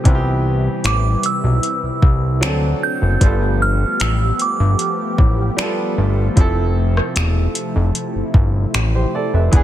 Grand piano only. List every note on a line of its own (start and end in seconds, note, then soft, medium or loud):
0.04 1.07 E3 medium
0.04 1.08 B3 medium
0.04 1.09 C4 medium
0.09 0.14 F4 medium
0.15 1.13 G4 medium
2.41 2.93 F#3 medium
2.41 2.94 C4 medium
2.41 2.94 D4 medium
2.46 2.95 A4 medium
3.20 4.23 G3 medium
3.20 4.24 B3 medium
3.20 4.25 F4 medium
3.25 4.26 A4 medium
5.57 6.09 G3 medium
5.57 6.09 B3 medium
5.57 6.10 F4 medium
5.62 6.11 A4 medium
6.36 7.39 F3 medium
6.36 7.40 C4 medium
6.36 7.40 E4 medium
6.40 7.41 A4 loud
8.95 9.13 G4 medium
8.95 9.13 C5 medium
9.15 9.33 A4 medium
9.15 9.33 D5 medium
9.34 9.63 B4 medium
9.34 9.63 E5 medium
9.51 9.63 E3 medium
9.51 9.63 B3 medium
9.51 9.63 D4 medium
9.56 9.63 G#4 loud